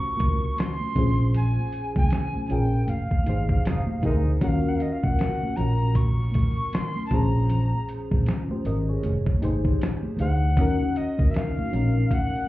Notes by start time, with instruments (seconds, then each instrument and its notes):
Already playing: fm electric piano C#4 F4 F#4 G4 A#4 C5, recorder C#6
0.17 kick, closed hi-hat, high conga
0.21 fingered electric bass C#2
0.57 recorder C6, snare, closed hi-hat, muted conga
0.80 muted conga, high conga
0.95 fingered electric bass A#1, fm electric piano C#4 F4 G#4 C5, kick, closed hi-hat, high conga, low conga
1.34 recorder G#5, closed hi-hat, low conga
1.59 muted conga
1.72 closed hi-hat
1.96 fingered electric bass C2, recorder G#5, kick, high conga
2.10 snare, closed hi-hat, muted conga
2.36 muted fingered electric bass stroke, high conga
2.47 fm electric piano C#4, recorder G#5, closed hi-hat, low conga
2.51 fingered electric bass A#1, fm electric piano F4 G#4 A#4, recorder G5
2.87 fingered electric bass F1, recorder F5, closed hi-hat, muted conga, high conga
3.11 kick
3.23 fm electric piano D#4, closed hi-hat, high conga
3.27 fingered electric bass G#1, fm electric piano G4 G#4 C5
3.49 kick
3.63 fingered electric bass F1, horn section C3 G#3 D#4, snare, closed hi-hat, muted conga
3.87 muted conga, high conga
4.02 fingered electric bass D2, horn section C3 G#3 D#4, fm electric piano D#4 G4 G#4, kick, closed hi-hat, high conga, low conga
4.06 fm electric piano A#4
4.41 fingered electric bass D#2, fm electric piano C#4 F4 F#4 A#4, recorder F#5, kick, closed hi-hat, low conga
4.48 recorder F5
4.69 recorder F#5
4.75 recorder F5
4.80 recorder D#5, closed hi-hat
4.93 recorder F5
5.03 fingered electric bass C#2, recorder F#5, kick, high conga
5.19 snare, closed hi-hat
5.43 muted fingered electric bass stroke, high conga
5.56 fingered electric bass A#1, fm electric piano C#4 F4 F#4, recorder A#5, closed hi-hat, low conga
5.60 fm electric piano A#4
5.95 recorder C#6, kick, closed hi-hat, muted conga, high conga
6.19 muted conga
6.32 kick, closed hi-hat, high conga
6.72 recorder C6, snare, closed hi-hat, muted conga
6.96 high conga
7.07 recorder A5
7.11 fingered electric bass A#1, fm electric piano C#4 F4 G#4 C5, kick, closed hi-hat, high conga, low conga
7.15 recorder A#5
7.50 closed hi-hat, low conga
7.74 muted conga
7.89 closed hi-hat
8.11 fingered electric bass A#1, kick, high conga
8.26 snare, closed hi-hat, muted conga
8.51 fm electric piano G4 C5, muted fingered electric bass stroke, muted conga, high conga
8.65 fingered electric bass G#1, fm electric piano A#4 D#5, closed hi-hat, low conga
8.89 fm electric piano G#4 C#5
9.03 fingered electric bass F1, closed hi-hat, muted conga, high conga
9.26 kick
9.39 fm electric piano D#4 G4, closed hi-hat, high conga
9.44 fingered electric bass G#1, fm electric piano G#4 C5
9.65 kick
9.79 snare, closed hi-hat, muted conga
10.03 high conga
10.17 fingered electric bass D2, fm electric piano D#4 G4, recorder F#5, closed hi-hat, high conga, low conga
10.21 fm electric piano G#4 C5
10.57 fingered electric bass D#2, fm electric piano C#4 D#4 F#4 A#4, kick, closed hi-hat, muted conga, low conga
10.81 muted conga
10.96 recorder D#5, closed hi-hat
11.18 fingered electric bass C#2, kick, high conga
11.31 recorder E5, closed hi-hat, muted conga
11.36 recorder F5, snare
11.59 muted fingered electric bass stroke, muted conga, high conga
11.72 fingered electric bass A#1, fm electric piano C#4 D#4 F#4 A#4, closed hi-hat, low conga
12.11 recorder F#5, kick, closed hi-hat, muted conga, high conga